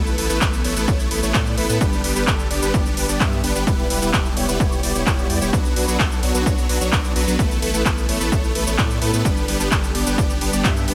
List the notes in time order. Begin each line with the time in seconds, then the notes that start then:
Already playing: A1 A3 B3 E4 A4 B4
0.07 cabasa
0.18 A1 A3 B3 E4 A4 B4, open hi-hat, ride
0.29 A1 A3 B3 E4 A4 B4, cabasa
0.41 A1 A3 B3 E4 A4 B4, kick, clap, ride, cabasa
0.53 cabasa
0.64 A1 A3 B3 E4 A4 C#5, open hi-hat, ride
0.76 A1 A3 B3 E4 A4 B4, cabasa
0.88 A1 A3 B3 E4 A4 C#5, kick, ride, cabasa
1.00 cabasa
1.11 A1 A3 B3 E4 A4 B4, open hi-hat, ride
1.23 A1 A3 B3 E4 A4 C#5, cabasa
1.34 A2 A3 B3 E4 A4 D5, kick, clap, ride, cabasa
1.46 cabasa
1.57 A1 A3 B3 E4 A4 B4, open hi-hat, ride
1.69 A2 A3 B3 E4 A4 B4, cabasa
1.81 G1 G3 B3 D4 G4 B4, kick, ride, cabasa
1.93 cabasa
2.04 G1 G3 B3 D4 G4 B4, open hi-hat, ride
2.16 G1 G3 B3 D4 G4 B4, cabasa
2.27 G1 G3 B3 D4 G4 A4, kick, clap, ride, cabasa
2.39 cabasa
2.50 G1 G3 B3 D4 G4 D5, open hi-hat, ride
2.62 G1 G3 B3 D4 G4 B4, cabasa
2.74 G1 G3 B3 D4 G4 D5, kick, ride, cabasa
2.86 cabasa
2.97 G1 G3 B3 D4 G4 B4, open hi-hat, ride
3.09 G1 G3 B3 D4 G4 D5, cabasa
3.20 G2 G3 B3 D4 G4 E5, kick, clap, ride, cabasa
3.33 cabasa
3.44 G1 G3 B3 D4 G4 B4, open hi-hat, ride
3.55 G1 G3 B3 D4 G4 B4, cabasa
3.67 E1 G3 B3 E4 G4 B4, kick, ride, cabasa
3.79 cabasa
3.90 E1 G3 B3 E4 G4 B4, open hi-hat, ride
4.02 E1 G3 B3 E4 G4 B4, cabasa
4.13 E1 G3 B3 E4 G4 A4, kick, clap, ride, cabasa
4.26 cabasa
4.37 E1 G3 B3 E4 G4 C#5, open hi-hat, ride
4.48 E1 G3 B3 E4 G4 B4, cabasa
4.60 E1 G3 B3 E4 G4 C#5, kick, ride, cabasa
4.72 cabasa
4.83 E1 G3 B3 E4 G4 D5, open hi-hat, ride
4.95 E1 G3 B3 E4 G4 C#5, cabasa
5.07 E1 G3 B3 E4 G4 C#5, kick, clap, ride, cabasa
5.19 cabasa
5.30 E2 G3 B3 E4 G4 D5, open hi-hat, ride
5.41 E1 G3 B3 E4 G4 C#5, cabasa
5.53 B1 F#3 B3 D4 F#4 B4, kick, ride, cabasa
5.65 cabasa
5.76 B1 F#3 B3 D4 F#4 B4, open hi-hat, ride
5.88 B1 F#3 B3 D4 F#4 B4, cabasa
5.99 B1 F#3 B3 D4 F#4 A4, kick, clap, ride, cabasa
6.12 cabasa
6.23 B1 F#3 B3 D4 F#4 C#5, open hi-hat, ride
6.34 B1 F#3 B3 D4 F#4 B4, cabasa
6.46 B1 F#3 B3 D4 F#4 C#5, kick, ride, cabasa
6.58 cabasa
6.69 B1 F#3 B3 D4 F#4 B4, open hi-hat, ride
6.81 B1 F#3 B3 D4 F#4 C#5, cabasa
6.92 B1 F#3 B3 D4 F#4 D5, kick, clap, ride, cabasa
7.05 cabasa
7.16 B1 F#3 B3 D4 F#4 B4, open hi-hat, ride
7.27 B1 F#3 B3 D4 F#4 B4, cabasa
7.39 A1 A3 B3 E4 A4 B4, kick, ride, cabasa
7.51 cabasa
7.62 A1 A3 B3 E4 A4 B4, open hi-hat, ride
7.74 A1 A3 B3 E4 A4 B4, cabasa
7.85 A1 A3 B3 E4 A4 B4, kick, clap, ride, cabasa
7.98 cabasa
8.08 A1 A3 B3 E4 A4 C#5, open hi-hat, ride
8.20 A1 A3 B3 E4 A4 B4, cabasa
8.32 A1 A3 B3 E4 A4 C#5, kick, ride, cabasa
8.44 cabasa
8.55 A1 A3 B3 E4 A4 B4, open hi-hat, ride
8.67 A1 A3 B3 E4 A4 C#5, cabasa
8.78 A2 A3 B3 E4 A4 D5, kick, clap, ride, cabasa
8.91 cabasa
9.02 A2 A3 B3 E4 A4 B4, open hi-hat, ride
9.13 A2 A3 B3 E4 A4 B4, cabasa
9.25 G1 G3 B3 D4 G4 B4, kick, ride, cabasa
9.37 cabasa
9.48 G1 G3 B3 D4 G4 B4, open hi-hat, ride
9.60 G1 G3 B3 D4 G4 B4, cabasa
9.71 G1 G3 B3 D4 G4 A4, kick, clap, ride, cabasa
9.84 cabasa
9.95 G1 G3 B3 D4 G4 D5, open hi-hat, ride
10.06 G1 G3 B3 D4 G4 B4, cabasa
10.18 G1 G3 B3 D4 G4 D5, kick, ride, cabasa
10.30 cabasa
10.41 G1 G3 B3 D4 G4 B4, open hi-hat, ride
10.53 G1 G3 B3 D4 G4 D5, cabasa
10.64 G2 G3 B3 D4 G4 E5, kick, clap, ride, cabasa
10.77 cabasa
10.88 G1 G3 B3 D4 G4 B4, open hi-hat, ride